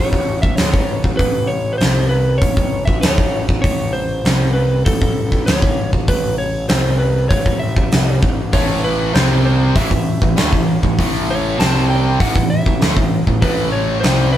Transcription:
0.00 0.12 A1 medium
0.00 0.42 C#5 loud
0.12 0.41 A1 medium
0.12 kick medium
0.42 0.57 A1 medium
0.42 0.56 E5 loud
0.42 kick medium
0.56 0.73 D2 medium
0.56 1.03 C#5 medium
0.56 snare loud
0.56 open hi-hat medium
0.74 1.02 A1 medium
0.74 kick medium
1.04 1.18 A1 medium
1.04 kick medium
1.17 1.77 A1 medium
1.17 1.50 B4 medium
1.17 kick medium
1.17 open hi-hat medium
1.47 1.73 C#5 medium
1.73 1.78 B4 medium
1.78 2.38 C2 medium
1.78 2.09 C5 medium
1.78 snare medium
1.78 open hi-hat soft
2.09 2.42 B4 medium
2.38 2.85 C#5 loud
2.38 kick loud
2.38 open hi-hat medium
2.42 2.56 A1 medium
2.57 2.85 A1 medium
2.57 kick medium
2.85 3.02 A1 medium
2.85 3.01 E5 medium
2.85 kick medium
3.01 3.17 D2 medium
3.01 3.45 C#5 medium
3.01 snare loud
3.01 open hi-hat soft
3.18 3.46 A1 medium
3.18 kick medium
3.49 3.63 A1 medium
3.49 kick medium
3.62 4.21 A1 medium
3.62 3.94 C#5 medium
3.62 kick medium
3.62 open hi-hat medium
3.93 4.53 C5 medium
4.25 4.82 C2 medium
4.25 snare loud
4.25 open hi-hat soft
4.54 4.85 B4 medium
4.85 5.00 A1 medium
4.85 5.46 A4 medium
4.85 kick loud
4.85 open hi-hat medium
5.02 5.30 A1 medium
5.02 kick medium
5.32 5.46 A1 medium
5.32 kick medium
5.46 5.62 D2 medium
5.46 5.89 C#5 medium
5.46 snare loud
5.46 open hi-hat medium
5.62 5.91 A1 medium
5.62 kick medium
5.93 6.07 A1 medium
5.93 kick medium
6.08 6.66 A1 loud
6.08 6.38 B4 medium
6.08 kick medium
6.08 open hi-hat medium
6.38 6.68 C#5 medium
6.69 7.27 C2 medium
6.69 6.98 C5 medium
6.69 snare loud
6.69 open hi-hat medium
6.98 7.29 B4 medium
7.29 7.45 A1 medium
7.29 7.58 C#5 medium
7.29 kick loud
7.29 open hi-hat medium
7.46 7.74 A1 medium
7.46 kick medium
7.59 8.18 E5 medium
7.76 7.91 A1 medium
7.76 kick medium
7.92 8.21 C2 medium
7.92 snare loud
7.92 open hi-hat soft
8.23 8.51 A1 medium
8.23 kick loud
8.53 9.11 A1 medium
8.53 9.13 A2 medium
8.53 9.14 E3 loud
8.53 9.14 A3 loud
8.53 8.84 C#5 medium
8.53 kick loud
8.53 open hi-hat medium
8.84 9.14 B4 medium
9.14 9.72 C2 medium
9.14 9.75 C3 medium
9.14 9.75 G3 medium
9.14 9.75 C4 loud
9.14 9.44 C5 medium
9.14 snare loud
9.14 open hi-hat soft
9.45 9.74 C5 medium
9.75 9.90 A1 medium
9.75 9.90 A2 medium
9.75 9.90 E3 medium
9.75 10.64 E5 medium
9.75 kick loud
9.75 open hi-hat medium
9.91 10.19 A1 medium
9.91 10.16 A2 medium
9.91 10.16 E3 medium
9.91 kick medium
10.22 10.36 A1 medium
10.22 10.36 A2 medium
10.22 10.37 E3 medium
10.22 kick medium
10.36 10.51 D2 medium
10.36 10.51 D3 medium
10.36 10.52 A3 loud
10.36 snare loud
10.36 open hi-hat medium
10.52 10.81 A1 medium
10.52 10.77 A2 medium
10.52 10.77 E3 medium
10.52 kick medium
10.83 10.97 A1 medium
10.83 10.97 A2 medium
10.83 10.98 E3 medium
10.83 kick medium
10.99 11.56 A1 medium
10.99 11.58 A2 medium
10.99 11.59 E3 medium
10.99 11.59 A3 loud
10.99 kick medium
10.99 open hi-hat medium
11.31 11.61 C#5 medium
11.59 12.16 C2 medium
11.59 12.19 C3 medium
11.59 12.19 G3 loud
11.59 12.20 C4 loud
11.59 11.90 A5 medium
11.59 snare medium
11.59 open hi-hat medium
11.90 12.21 G5 medium
12.20 12.34 A1 medium
12.20 12.34 A2 medium
12.20 12.35 E3 loud
12.20 12.50 F#5 medium
12.20 kick loud
12.20 open hi-hat medium
12.36 12.64 A1 medium
12.36 12.60 A2 medium
12.36 12.60 E3 medium
12.36 kick loud
12.50 13.08 E5 medium
12.66 12.80 A1 medium
12.66 12.81 A2 medium
12.66 12.82 E3 medium
12.66 kick medium
12.81 12.95 D2 medium
12.81 12.96 D3 medium
12.81 12.97 A3 loud
12.81 snare loud
12.81 open hi-hat soft
12.96 13.25 A1 medium
12.96 13.21 A2 medium
12.96 13.22 E3 medium
12.96 kick medium
13.27 13.41 A1 medium
13.27 13.41 A2 medium
13.27 13.42 E3 medium
13.27 kick medium
13.42 13.99 A1 loud
13.42 14.02 A2 loud
13.42 14.03 E3 medium
13.42 14.03 A3 loud
13.42 13.71 B4 medium
13.42 kick loud
13.42 open hi-hat soft
13.72 14.00 C#5 medium
14.00 14.38 C2 medium
14.00 14.38 C3 medium
14.00 14.38 G3 medium
14.00 14.32 C5 medium
14.00 snare loud
14.00 open hi-hat soft
14.05 14.38 C4 loud
14.33 14.38 B4 medium

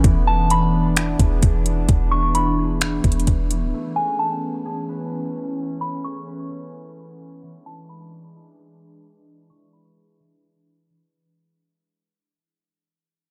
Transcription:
0.00 1.26 A3 medium
0.00 7.39 B3 medium
0.00 0.94 G#4 medium
0.00 0.94 B4 loud
0.04 1.16 E1 loud
0.04 3.70 E3 medium
0.04 2.10 E3 medium
0.04 3.70 D4 medium
0.04 kick loud
0.04 closed hi-hat medium
0.27 0.97 E4 medium
0.27 0.49 A5 medium
0.50 0.94 B5 medium
0.50 closed hi-hat medium
0.96 2.35 E4 medium
0.96 finger snap loud
0.96 closed hi-hat medium
1.19 1.42 E1 loud
1.19 2.58 G#4 medium
1.19 kick medium
1.19 closed hi-hat medium
1.43 1.87 E1 loud
1.43 kick medium
1.43 closed hi-hat medium
1.66 closed hi-hat medium
1.89 3.00 E1 loud
1.89 kick loud
1.89 closed hi-hat medium
2.11 2.80 E3 medium
2.11 2.33 C#6 medium
2.35 4.96 E4 medium
2.35 2.78 B5 medium
2.35 closed hi-hat medium
2.58 3.80 G#4 medium
2.81 3.49 E3 medium
2.81 finger snap loud
2.81 closed hi-hat medium
3.04 3.26 E1 loud
3.04 kick medium
3.04 closed hi-hat medium
3.12 closed hi-hat medium
3.20 closed hi-hat medium
3.27 3.63 E1 loud
3.27 kick medium
3.27 closed hi-hat medium
3.51 3.78 E3 medium
3.51 closed hi-hat medium
3.62 3.73 D1 loud
3.74 7.39 E3 medium
3.74 5.81 A3 medium
3.74 7.39 C#4 medium
3.96 7.47 G#3 medium
3.96 4.18 G#5 medium
4.19 4.63 A5 medium
4.65 6.04 G#4 medium
4.89 6.27 B4 medium
5.81 6.50 A3 medium
5.81 6.03 B5 medium
6.04 8.32 G#4 medium
6.04 6.48 C#6 medium
6.27 8.32 B4 medium
6.50 7.19 A3 medium
7.20 8.64 A3 medium
7.42 11.08 E3 medium
7.42 9.49 E3 medium
7.42 11.08 G#3 medium
7.42 11.08 D4 medium
7.66 8.35 E4 medium
7.66 7.88 A5 medium
7.89 8.32 B5 medium
8.35 9.73 E4 medium
8.58 9.96 G#4 medium
9.50 10.18 E3 medium
9.50 9.72 C#6 medium
9.73 12.35 E4 medium
9.73 10.17 B5 medium
9.97 12.24 G#4 medium
10.20 10.88 E3 medium
10.89 11.17 E3 medium

